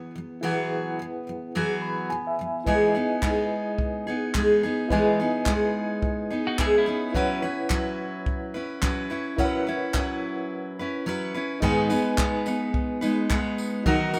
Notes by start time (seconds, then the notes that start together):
Already playing: E3 F#3 B3 E4 G#4 B4 F#5
0.15 E3 F#3
0.41 E3 F#3 B3 E4 F#4 G#4 B4 F#5
0.99 E3 F#3
1.27 E3 F#3
1.55 E3 F#3 B3 F#4 G#4
1.82 B5
2.10 E3 F#3 G#5
2.27 E5
2.39 E3 F#3
2.64 E3 G#3 B3 D#4 E4 B4 D#5, kick
2.68 G#4 G#5
2.95 B3 D#4 G#4
3.22 G#3 B3 D#4 G#4, kick, clap
3.78 kick
4.07 B3 D#4 G#4
4.34 G#3 B3 D#4 G#4, kick, clap
4.63 B3 D#4 G#4
4.88 E3 G#3 B3 E4 B4 D#5, kick
4.92 D#4 G#4 G#5
5.20 B3 D#4 G#4
5.46 G#3 B3 D#4 G#4, kick, clap
6.02 kick
6.30 B3 D#4 G#4
6.47 D#4 F#4
6.59 G#3 B3 D#4 E4 G#4, kick, clap
6.78 C#4 E4
6.86 B3 D#4 G#4
7.12 F#3 C#4 E4 B4 C#5 F#5, kick
7.16 E4 B4
7.42 C#4 E4 B4
7.70 F#3 C#4 E4 B4, kick, clap
8.26 kick
8.54 C#4 E4 B4
8.81 F#3 C#4 E4 B4, kick, clap
9.10 C#4 E4 B4
9.36 F#3 C#4 E4 A#4 B4 C#5 F#5, kick
9.44 B4
9.67 C#4 E4 B4
9.94 F#3 C#4 E4 B4, kick, clap
10.79 C#4 E4 B4
11.06 F#3 C#4 E4 B4
11.34 C#4 E4 B4
11.60 G#2 D#3 G#3 B3 D#4 G#4 B4, kick, crash
11.64 G#5
11.90 G#3 B3 D#4 B4, tambourine
12.18 G#3 B3 D#4 B4, kick, clap
12.46 G#3 B3 D#4 B4, tambourine
12.74 kick
13.01 G#3 B3 D#4 B4, tambourine
13.30 G#3 B3 D#4 B4, kick, clap
13.58 tambourine
13.84 D#3 F#3 D#4 F#4 A#4, kick
13.88 F#5
14.13 D#4 F#4 A#4, tambourine